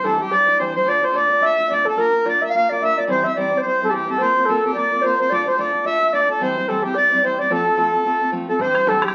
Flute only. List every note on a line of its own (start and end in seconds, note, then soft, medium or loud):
0.04 0.20 A4 medium
0.20 0.33 G4 medium
0.32 0.62 D5 medium
0.60 0.75 C5 medium
0.76 0.90 C5 medium
0.89 1.06 D5 medium
1.04 1.17 C5 medium
1.15 1.31 D5 medium
1.31 1.44 D5 medium
1.42 1.68 E5 medium
1.69 1.87 D5 medium
1.85 1.99 A4 medium
1.98 2.27 A#4 medium
2.26 2.43 D5 medium
2.42 2.48 E5 medium
2.49 2.54 F5 medium
2.54 2.71 F5 medium
2.69 2.81 D5 medium
2.81 2.99 E5 medium
2.98 3.12 D5 medium
3.10 3.25 C5 medium
3.24 3.35 E5 medium
3.36 3.59 D5 medium
3.58 3.63 C5 medium
3.64 3.83 C5 medium
3.84 3.92 A4 medium
3.90 4.19 G4 medium
4.18 4.47 C5 medium
4.45 4.73 A4 medium
4.74 5.03 D5 medium
5.02 5.17 C5 medium
5.18 5.31 C5 medium
5.30 5.46 D5 medium
5.47 5.58 C5 medium
5.58 5.87 D5 medium
5.86 6.15 E5 loud
6.13 6.29 D5 medium
6.41 6.70 C5 medium
6.68 6.84 A4 medium
6.83 6.96 G4 medium
6.95 7.23 D5 medium
7.24 7.40 C5 medium
7.39 7.53 D5 medium
7.51 8.21 A4 medium
8.49 8.63 A4 medium
8.61 8.90 C5 medium
8.88 9.07 A4 medium
9.05 9.15 G4 medium